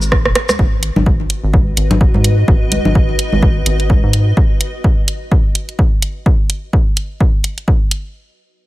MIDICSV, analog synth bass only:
0, 0, Header, 1, 2, 480
1, 0, Start_track
1, 0, Key_signature, 5, "minor"
1, 0, Tempo, 472441
1, 599, Time_signature, 4, 2, 24, 8
1, 8807, End_track
2, 0, Start_track
2, 0, Title_t, "Analog synth bass"
2, 0, Program_c, 0, 38
2, 0, Note_on_c, 0, 32, 91
2, 258, Note_on_c, 0, 27, 97
2, 273, Note_off_c, 0, 32, 0
2, 333, Note_off_c, 0, 27, 0
2, 600, Note_on_c, 0, 32, 97
2, 920, Note_off_c, 0, 32, 0
2, 978, Note_on_c, 0, 32, 83
2, 1277, Note_off_c, 0, 32, 0
2, 1458, Note_on_c, 0, 32, 100
2, 1757, Note_off_c, 0, 32, 0
2, 1800, Note_on_c, 0, 32, 90
2, 2120, Note_off_c, 0, 32, 0
2, 2177, Note_on_c, 0, 44, 91
2, 2477, Note_off_c, 0, 44, 0
2, 2519, Note_on_c, 0, 32, 96
2, 2840, Note_off_c, 0, 32, 0
2, 2898, Note_on_c, 0, 32, 83
2, 3197, Note_off_c, 0, 32, 0
2, 3378, Note_on_c, 0, 32, 98
2, 3677, Note_off_c, 0, 32, 0
2, 3720, Note_on_c, 0, 32, 86
2, 4041, Note_off_c, 0, 32, 0
2, 4098, Note_on_c, 0, 44, 90
2, 4398, Note_off_c, 0, 44, 0
2, 8807, End_track
0, 0, End_of_file